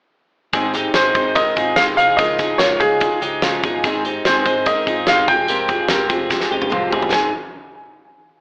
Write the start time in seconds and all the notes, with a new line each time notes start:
0.53 G#1 G#2 D#3 G#3 C4 D#4 G#4, kick, closed hi-hat
0.73 G#3 C4 D#4 G4, snare, closed hi-hat
0.94 G#1 G#2 D#3 G#3 C4 D#4 G#4 C5, snare, closed hi-hat
1.15 G#1 C4 D#4 G#4 C5, kick, closed hi-hat
1.19 G#3
1.35 D#3 G#3 C4 D#4 A#4 D#5, kick, closed hi-hat
1.56 G#1 G#3 C4 D#4 F4 G#4, kick, closed hi-hat
1.76 G#1 G#2 D#3 G#3 C4 D#4 G4 F5, snare, closed hi-hat
1.97 C2 G#3 C4 D#4 F4 G#4 F5, closed hi-hat
2.17 C#2 C#3 F3 G#3 D#4 F4 A#4 D#5, kick, closed hi-hat
2.38 F3 G#3 D#4 F4 G#4, kick, snare, closed hi-hat
2.58 C#2 C#3 F3 G#3 D#4 F4 A#4 C#5, snare, closed hi-hat
2.80 C#2 F3 G#3 D#4 F4 G#4, kick, closed hi-hat
3.01 C#3 F3 G#3 D#4, kick, closed hi-hat
3.21 C#2 F3 G#3 D#4 G4, closed hi-hat
3.42 C#2 C#3 F3 G#3 C#4 D#4 F4, snare, closed hi-hat
3.63 G1 F3 G#3 D#4 F4 G#4, kick, closed hi-hat
3.84 G#1 G#2 D#3 G#3 C4 D#4 G#4, kick, closed hi-hat
4.05 G#3 C4 D#4 G4, closed hi-hat
4.25 G#1 G#2 D#3 G#3 C4 D#4 G#4 C5, snare, closed hi-hat
4.45 G#1 G#3 C4 D#4 G#4 C5, kick, closed hi-hat
4.66 D#3 G#3 C4 D#4 A#4 D#5, kick, closed hi-hat
4.87 G#1 G#3 C4 D#4 F4 G#4, kick, closed hi-hat
5.07 G#1 G#2 D#3 G#3 C4 D#4 G4 F5, snare, closed hi-hat
5.27 F1 G#3 C4 F4 G4 G#4 G5, kick, closed hi-hat
5.48 F3 G#3 C4 G4 A#4, closed hi-hat
5.68 G#3 C4 F4 G4 G#4, kick, closed hi-hat
5.88 F1 F3 G#3 C4 G4 A#4, snare, closed hi-hat
6.09 F1 G#3 C4 F4 G4 G#4, kick, closed hi-hat
6.30 F3 G#3 C4 G4, kick, snare
6.41 snare
6.51 F1 G#3 C4 D#4 G4
6.62 high tom
6.70 F1 F3 G#3 C4 F4 G4, mid tom
6.90 G1 G#3 C4 F4 G4 G#4, floor tom
7.02 floor tom
7.11 G#1 G#2 D#3 G#3 C4 D#4 G#4 G#5, kick, snare